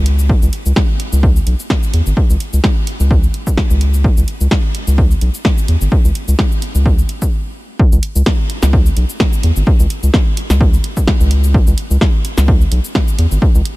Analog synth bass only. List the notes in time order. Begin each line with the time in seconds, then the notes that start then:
Already playing: C#2
0.42 C#2
0.66 C#2
1.13 C#2
1.47 B1
1.93 E2
2.06 G#1
2.30 C#2
2.53 C#2
3.00 C#2
3.70 C#2
4.17 C#2
4.41 C#2
4.87 C#2
5.21 B1
5.68 E2
5.81 G#1
6.04 C#2
6.28 C#2
6.75 C#2
7.92 C#2
8.16 C#2
8.63 C#2
8.97 B1
9.44 E2
9.56 G#1
9.80 C#2
10.03 C#2
10.50 C#2
11.20 C#2
11.67 C#2
11.90 C#2
12.37 C#2
12.72 B1
13.19 E2
13.31 G#1
13.55 C#2